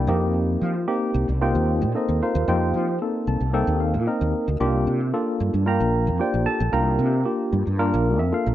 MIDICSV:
0, 0, Header, 1, 3, 480
1, 0, Start_track
1, 0, Tempo, 531915
1, 313, Time_signature, 4, 2, 24, 8
1, 7715, End_track
2, 0, Start_track
2, 0, Title_t, "Tine electric piano"
2, 0, Program_c, 0, 4
2, 74, Note_on_c, 0, 58, 83
2, 74, Note_on_c, 0, 60, 79
2, 75, Note_on_c, 0, 75, 72
2, 77, Note_on_c, 0, 63, 81
2, 78, Note_on_c, 0, 67, 98
2, 298, Note_off_c, 0, 75, 0
2, 654, Note_off_c, 0, 58, 0
2, 654, Note_off_c, 0, 60, 0
2, 655, Note_off_c, 0, 63, 0
2, 656, Note_off_c, 0, 67, 0
2, 791, Note_on_c, 0, 58, 91
2, 793, Note_on_c, 0, 63, 78
2, 793, Note_on_c, 0, 67, 104
2, 794, Note_on_c, 0, 60, 80
2, 1145, Note_off_c, 0, 58, 0
2, 1146, Note_off_c, 0, 60, 0
2, 1146, Note_off_c, 0, 63, 0
2, 1146, Note_off_c, 0, 67, 0
2, 1273, Note_on_c, 0, 60, 77
2, 1274, Note_on_c, 0, 58, 89
2, 1276, Note_on_c, 0, 63, 75
2, 1277, Note_on_c, 0, 65, 92
2, 1283, Note_on_c, 0, 79, 86
2, 1285, Note_on_c, 0, 75, 71
2, 1286, Note_on_c, 0, 72, 71
2, 1287, Note_on_c, 0, 67, 71
2, 1626, Note_off_c, 0, 60, 0
2, 1627, Note_off_c, 0, 58, 0
2, 1628, Note_off_c, 0, 63, 0
2, 1628, Note_off_c, 0, 65, 0
2, 1726, Note_off_c, 0, 75, 0
2, 1726, Note_off_c, 0, 79, 0
2, 1727, Note_off_c, 0, 72, 0
2, 1728, Note_off_c, 0, 67, 0
2, 1757, Note_on_c, 0, 58, 77
2, 1758, Note_on_c, 0, 60, 65
2, 1758, Note_on_c, 0, 63, 69
2, 1762, Note_on_c, 0, 69, 76
2, 1772, Note_on_c, 0, 75, 78
2, 1778, Note_on_c, 0, 72, 61
2, 1779, Note_on_c, 0, 70, 56
2, 1996, Note_off_c, 0, 75, 0
2, 1999, Note_off_c, 0, 72, 0
2, 2000, Note_off_c, 0, 70, 0
2, 2007, Note_on_c, 0, 65, 70
2, 2009, Note_on_c, 0, 77, 85
2, 2010, Note_on_c, 0, 72, 74
2, 2011, Note_on_c, 0, 70, 68
2, 2108, Note_off_c, 0, 58, 0
2, 2108, Note_off_c, 0, 63, 0
2, 2109, Note_off_c, 0, 60, 0
2, 2110, Note_off_c, 0, 69, 0
2, 2230, Note_off_c, 0, 65, 0
2, 2235, Note_off_c, 0, 77, 0
2, 2236, Note_off_c, 0, 70, 0
2, 2236, Note_off_c, 0, 72, 0
2, 2236, Note_on_c, 0, 58, 83
2, 2236, Note_on_c, 0, 60, 70
2, 2236, Note_on_c, 0, 63, 80
2, 2241, Note_on_c, 0, 65, 86
2, 2245, Note_on_c, 0, 79, 82
2, 2249, Note_on_c, 0, 75, 69
2, 2250, Note_on_c, 0, 67, 64
2, 2253, Note_on_c, 0, 72, 65
2, 2587, Note_off_c, 0, 58, 0
2, 2587, Note_off_c, 0, 60, 0
2, 2588, Note_off_c, 0, 63, 0
2, 2590, Note_off_c, 0, 65, 0
2, 2687, Note_off_c, 0, 79, 0
2, 2689, Note_off_c, 0, 67, 0
2, 2689, Note_off_c, 0, 75, 0
2, 2691, Note_off_c, 0, 72, 0
2, 2723, Note_on_c, 0, 58, 81
2, 2724, Note_on_c, 0, 63, 63
2, 2725, Note_on_c, 0, 69, 83
2, 2726, Note_on_c, 0, 60, 66
2, 2958, Note_on_c, 0, 81, 60
2, 3071, Note_off_c, 0, 58, 0
2, 3072, Note_off_c, 0, 60, 0
2, 3072, Note_off_c, 0, 63, 0
2, 3072, Note_off_c, 0, 69, 0
2, 3180, Note_off_c, 0, 81, 0
2, 3190, Note_on_c, 0, 58, 96
2, 3190, Note_on_c, 0, 63, 82
2, 3191, Note_on_c, 0, 60, 88
2, 3193, Note_on_c, 0, 69, 107
2, 3195, Note_on_c, 0, 79, 74
2, 3418, Note_off_c, 0, 79, 0
2, 3433, Note_on_c, 0, 77, 62
2, 3545, Note_off_c, 0, 58, 0
2, 3545, Note_off_c, 0, 60, 0
2, 3545, Note_off_c, 0, 63, 0
2, 3546, Note_off_c, 0, 69, 0
2, 3657, Note_off_c, 0, 77, 0
2, 3673, Note_on_c, 0, 63, 74
2, 3674, Note_on_c, 0, 58, 78
2, 3674, Note_on_c, 0, 60, 77
2, 3676, Note_on_c, 0, 75, 68
2, 3679, Note_on_c, 0, 70, 89
2, 4026, Note_off_c, 0, 63, 0
2, 4027, Note_off_c, 0, 58, 0
2, 4027, Note_off_c, 0, 60, 0
2, 4029, Note_off_c, 0, 70, 0
2, 4122, Note_off_c, 0, 75, 0
2, 4152, Note_on_c, 0, 58, 92
2, 4154, Note_on_c, 0, 62, 90
2, 4154, Note_on_c, 0, 65, 86
2, 4155, Note_on_c, 0, 67, 103
2, 4506, Note_off_c, 0, 58, 0
2, 4506, Note_off_c, 0, 62, 0
2, 4506, Note_off_c, 0, 65, 0
2, 4507, Note_off_c, 0, 67, 0
2, 4633, Note_on_c, 0, 62, 76
2, 4634, Note_on_c, 0, 58, 89
2, 4634, Note_on_c, 0, 65, 82
2, 4636, Note_on_c, 0, 69, 94
2, 4986, Note_off_c, 0, 58, 0
2, 4986, Note_off_c, 0, 62, 0
2, 4986, Note_off_c, 0, 65, 0
2, 4987, Note_off_c, 0, 69, 0
2, 5106, Note_on_c, 0, 62, 82
2, 5110, Note_on_c, 0, 58, 89
2, 5110, Note_on_c, 0, 65, 76
2, 5110, Note_on_c, 0, 70, 89
2, 5121, Note_on_c, 0, 82, 91
2, 5124, Note_on_c, 0, 79, 69
2, 5126, Note_on_c, 0, 77, 65
2, 5462, Note_off_c, 0, 62, 0
2, 5464, Note_off_c, 0, 58, 0
2, 5464, Note_off_c, 0, 65, 0
2, 5464, Note_off_c, 0, 70, 0
2, 5564, Note_off_c, 0, 82, 0
2, 5565, Note_off_c, 0, 79, 0
2, 5567, Note_off_c, 0, 77, 0
2, 5589, Note_on_c, 0, 58, 69
2, 5590, Note_on_c, 0, 65, 73
2, 5591, Note_on_c, 0, 67, 82
2, 5593, Note_on_c, 0, 62, 67
2, 5601, Note_on_c, 0, 79, 86
2, 5603, Note_on_c, 0, 72, 60
2, 5607, Note_on_c, 0, 74, 66
2, 5830, Note_off_c, 0, 79, 0
2, 5830, Note_on_c, 0, 81, 102
2, 5831, Note_off_c, 0, 72, 0
2, 5833, Note_off_c, 0, 74, 0
2, 5835, Note_on_c, 0, 69, 76
2, 5943, Note_off_c, 0, 58, 0
2, 5944, Note_off_c, 0, 65, 0
2, 5944, Note_off_c, 0, 67, 0
2, 5945, Note_off_c, 0, 62, 0
2, 6064, Note_off_c, 0, 81, 0
2, 6066, Note_on_c, 0, 58, 78
2, 6067, Note_off_c, 0, 69, 0
2, 6068, Note_on_c, 0, 65, 69
2, 6071, Note_on_c, 0, 62, 76
2, 6071, Note_on_c, 0, 70, 93
2, 6073, Note_on_c, 0, 82, 78
2, 6076, Note_on_c, 0, 79, 61
2, 6078, Note_on_c, 0, 77, 64
2, 6422, Note_off_c, 0, 58, 0
2, 6423, Note_off_c, 0, 65, 0
2, 6424, Note_off_c, 0, 62, 0
2, 6424, Note_off_c, 0, 70, 0
2, 6519, Note_off_c, 0, 82, 0
2, 6521, Note_off_c, 0, 79, 0
2, 6522, Note_off_c, 0, 77, 0
2, 6544, Note_on_c, 0, 58, 77
2, 6546, Note_on_c, 0, 62, 64
2, 6546, Note_on_c, 0, 67, 88
2, 6548, Note_on_c, 0, 65, 69
2, 6900, Note_off_c, 0, 58, 0
2, 6901, Note_off_c, 0, 62, 0
2, 6901, Note_off_c, 0, 67, 0
2, 6902, Note_off_c, 0, 65, 0
2, 7030, Note_on_c, 0, 58, 99
2, 7032, Note_on_c, 0, 62, 95
2, 7032, Note_on_c, 0, 65, 89
2, 7032, Note_on_c, 0, 70, 113
2, 7383, Note_off_c, 0, 58, 0
2, 7384, Note_off_c, 0, 62, 0
2, 7384, Note_off_c, 0, 65, 0
2, 7384, Note_off_c, 0, 70, 0
2, 7393, Note_on_c, 0, 76, 79
2, 7506, Note_off_c, 0, 76, 0
2, 7511, Note_on_c, 0, 58, 73
2, 7511, Note_on_c, 0, 65, 70
2, 7513, Note_on_c, 0, 69, 75
2, 7514, Note_on_c, 0, 62, 65
2, 7527, Note_on_c, 0, 77, 92
2, 7640, Note_off_c, 0, 77, 0
2, 7651, Note_on_c, 0, 70, 67
2, 7715, Note_off_c, 0, 58, 0
2, 7715, Note_off_c, 0, 62, 0
2, 7715, Note_off_c, 0, 65, 0
2, 7715, Note_off_c, 0, 69, 0
2, 7715, Note_off_c, 0, 70, 0
2, 7715, End_track
3, 0, Start_track
3, 0, Title_t, "Fretless electric bass"
3, 0, Program_c, 1, 35
3, 65, Note_on_c, 1, 41, 97
3, 499, Note_off_c, 1, 41, 0
3, 554, Note_on_c, 1, 53, 81
3, 769, Note_off_c, 1, 53, 0
3, 1031, Note_on_c, 1, 36, 84
3, 1144, Note_off_c, 1, 36, 0
3, 1160, Note_on_c, 1, 36, 80
3, 1375, Note_off_c, 1, 36, 0
3, 1398, Note_on_c, 1, 39, 94
3, 1639, Note_on_c, 1, 46, 91
3, 1653, Note_off_c, 1, 39, 0
3, 1742, Note_off_c, 1, 46, 0
3, 1881, Note_on_c, 1, 39, 82
3, 1983, Note_off_c, 1, 39, 0
3, 2120, Note_on_c, 1, 39, 93
3, 2223, Note_off_c, 1, 39, 0
3, 2235, Note_on_c, 1, 41, 93
3, 2450, Note_off_c, 1, 41, 0
3, 2472, Note_on_c, 1, 53, 77
3, 2688, Note_off_c, 1, 53, 0
3, 2953, Note_on_c, 1, 36, 73
3, 3065, Note_off_c, 1, 36, 0
3, 3072, Note_on_c, 1, 36, 83
3, 3291, Note_off_c, 1, 36, 0
3, 3314, Note_on_c, 1, 39, 93
3, 3556, Note_on_c, 1, 46, 89
3, 3569, Note_off_c, 1, 39, 0
3, 3661, Note_off_c, 1, 46, 0
3, 3799, Note_on_c, 1, 39, 84
3, 3903, Note_off_c, 1, 39, 0
3, 4040, Note_on_c, 1, 38, 91
3, 4143, Note_off_c, 1, 38, 0
3, 4154, Note_on_c, 1, 36, 86
3, 4370, Note_off_c, 1, 36, 0
3, 4394, Note_on_c, 1, 48, 81
3, 4609, Note_off_c, 1, 48, 0
3, 4876, Note_on_c, 1, 43, 79
3, 4987, Note_off_c, 1, 43, 0
3, 4997, Note_on_c, 1, 43, 77
3, 5213, Note_off_c, 1, 43, 0
3, 5236, Note_on_c, 1, 34, 88
3, 5478, Note_on_c, 1, 41, 86
3, 5491, Note_off_c, 1, 34, 0
3, 5581, Note_off_c, 1, 41, 0
3, 5719, Note_on_c, 1, 34, 81
3, 5822, Note_off_c, 1, 34, 0
3, 5958, Note_on_c, 1, 34, 95
3, 6062, Note_off_c, 1, 34, 0
3, 6070, Note_on_c, 1, 36, 90
3, 6287, Note_off_c, 1, 36, 0
3, 6306, Note_on_c, 1, 48, 83
3, 6524, Note_off_c, 1, 48, 0
3, 6790, Note_on_c, 1, 43, 81
3, 6903, Note_off_c, 1, 43, 0
3, 6920, Note_on_c, 1, 43, 82
3, 7134, Note_off_c, 1, 43, 0
3, 7162, Note_on_c, 1, 34, 96
3, 7394, Note_off_c, 1, 34, 0
3, 7394, Note_on_c, 1, 41, 93
3, 7498, Note_off_c, 1, 41, 0
3, 7638, Note_on_c, 1, 34, 87
3, 7715, Note_off_c, 1, 34, 0
3, 7715, End_track
0, 0, End_of_file